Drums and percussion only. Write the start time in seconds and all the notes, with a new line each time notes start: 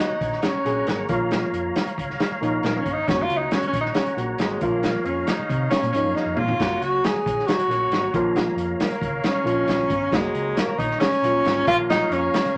0.21 kick, closed hi-hat
0.32 snare
0.42 snare, closed hi-hat
0.66 closed hi-hat
0.87 snare, closed hi-hat
1.09 kick, closed hi-hat
1.31 snare, closed hi-hat
1.54 closed hi-hat
1.76 snare, closed hi-hat
1.87 closed hi-hat
1.98 kick, closed hi-hat
2.10 snare
2.20 snare, closed hi-hat
2.43 closed hi-hat
2.63 snare, closed hi-hat
2.86 kick, closed hi-hat
3.08 kick, snare, closed hi-hat
3.30 closed hi-hat
3.51 snare, closed hi-hat
3.62 closed hi-hat
3.73 kick, closed hi-hat
3.85 snare
3.94 snare, closed hi-hat
4.06 closed hi-hat
4.18 closed hi-hat
4.38 snare, closed hi-hat
4.61 kick, closed hi-hat
4.83 snare, closed hi-hat
5.05 closed hi-hat
5.27 snare, closed hi-hat
5.50 kick, closed hi-hat
5.71 snare, closed hi-hat
5.83 closed hi-hat
5.94 closed hi-hat
6.16 snare
6.37 mid tom
6.48 floor tom
6.60 kick, snare, closed hi-hat
6.82 closed hi-hat
7.04 snare, closed hi-hat
7.26 kick, closed hi-hat
7.39 snare
7.48 snare, closed hi-hat
7.59 closed hi-hat
7.71 closed hi-hat
7.91 snare, closed hi-hat
8.14 kick, closed hi-hat
8.36 snare, closed hi-hat
8.58 closed hi-hat
8.80 snare, closed hi-hat
8.91 closed hi-hat
9.02 kick, closed hi-hat
9.24 snare, closed hi-hat
9.47 closed hi-hat
9.68 snare, closed hi-hat
9.90 kick, closed hi-hat
10.12 kick, snare, closed hi-hat
10.35 closed hi-hat
10.57 snare, closed hi-hat
10.79 kick, closed hi-hat
10.91 snare
11.00 snare, closed hi-hat
11.12 closed hi-hat
11.24 closed hi-hat
11.45 snare, closed hi-hat
11.67 kick, closed hi-hat
11.90 snare, closed hi-hat
12.12 closed hi-hat
12.34 snare, closed hi-hat
12.45 closed hi-hat